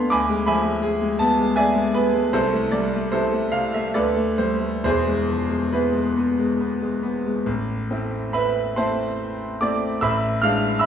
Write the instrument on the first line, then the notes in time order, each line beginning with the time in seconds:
grand piano
Already playing: D3 A3 B3 D5 F5 A5 B5 C6
0.10 D2 G#5 B5 D6
0.30 G#3
0.46 F3 E5 G#5 B5
0.65 G#3
0.82 G#4
1.02 G#3
1.19 B3 A5
1.39 G#3
1.56 G#4 D5 E5 G#5
1.75 G#3
1.94 B3 B4
2.14 G#3
2.33 C2 E4 A4 C5
2.53 A3
2.72 G3 D5
2.94 A3
3.12 C3 E4 A4 C5
3.32 A3
3.52 C3 F5
3.74 A3 E5
3.94 D2 A4 B4 D5
4.16 A3
4.38 G3 C5
4.60 A3
4.84 E1 E2 E4 G#4 C5
5.07 G#3
5.30 F3
5.51 G#3
5.72 B3 E4 G#4 B4
5.94 G#3
6.17 B3
6.39 G#3
6.60 B3
6.81 G#3
7.03 B3
7.26 G#3
7.46 A1
7.91 A3 C4 E4
8.33 B4 E5 B5
8.76 A3 C4 E4 C5 A5 C6
9.61 A3 C4 E4 D5 D6
10.01 A1 E5 B5 E6
10.42 G#3 D4 E4 F5 F6
10.79 E5 B5 E6